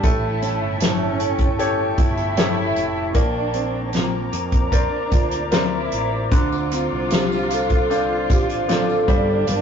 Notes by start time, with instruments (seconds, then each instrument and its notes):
Already playing: steel-string acoustic guitar D4 G4 A4, ambient pad A5
0.03 fretless electric bass A1, steel-string acoustic guitar A2, grand piano A3, cello section E4, ambient pad G5 C#6, kick, closed hi-hat
0.42 steel-string acoustic guitar C#4, closed hi-hat
0.62 fretless electric bass G1
0.80 steel-string acoustic guitar C#4 E4 A4, cello section C#4, snare, closed hi-hat
1.20 closed hi-hat
1.39 kick, closed hi-hat
1.58 cello section C#4, grand piano G4 A4 C#5, closed hi-hat
1.97 fretless electric bass G1, cello section E4, steel-string acoustic guitar E4, kick, closed hi-hat
2.17 closed hi-hat
2.37 steel-string acoustic guitar C#4 E4 A4, grand piano G4 A4 C#5, snare, closed hi-hat
2.76 fretless electric bass F1, closed hi-hat
3.14 fretless electric bass A#1, grand piano A#3, cello section D4, ambient pad C5 A#5 D6, kick, closed hi-hat
3.54 steel-string acoustic guitar C4, closed hi-hat
3.86 cello section D4
3.93 steel-string acoustic guitar C4 F4 A#4, cello section C4, snare, closed hi-hat
4.33 fretless electric bass F2, cello section A#3, closed hi-hat
4.52 kick, closed hi-hat
4.66 cello section C#4
4.72 cello section D4, grand piano A#4 C5 D5, kick, closed hi-hat
5.12 fretless electric bass D2, steel-string acoustic guitar F4, kick, closed hi-hat
5.31 closed hi-hat
5.51 steel-string acoustic guitar C4 A#4, cello section E4, grand piano A#4 C5 D5, snare, closed hi-hat
5.92 fretless electric bass A1, closed hi-hat
6.31 fretless electric bass D2, grand piano D3, steel-string acoustic guitar D3, soft synth lead D4, cello section F4, ambient pad F5, kick, closed hi-hat
6.52 tambourine
6.71 steel-string acoustic guitar C4, soft synth lead F4, closed hi-hat, tambourine
6.93 fretless electric bass C2
7.11 steel-string acoustic guitar C4 F4 A4, snare, closed hi-hat, tambourine
7.15 soft synth lead G4
7.32 tambourine
7.50 soft synth lead A4, closed hi-hat, tambourine
7.70 kick, closed hi-hat
7.90 grand piano C4 D4 F4, closed hi-hat, tambourine
8.30 fretless electric bass A1, steel-string acoustic guitar F4, soft synth lead G4, kick, closed hi-hat, tambourine
8.49 closed hi-hat
8.68 grand piano C4 D4 F4, steel-string acoustic guitar C4 F4 A4, snare, closed hi-hat, tambourine
8.72 soft synth lead A4
8.89 tambourine
9.07 fretless electric bass G1, grand piano G3, steel-string acoustic guitar G3, cello section D4, ambient pad G5 A5, kick, closed hi-hat
9.47 fretless electric bass G1, steel-string acoustic guitar G3, closed hi-hat
9.51 soft synth lead A#4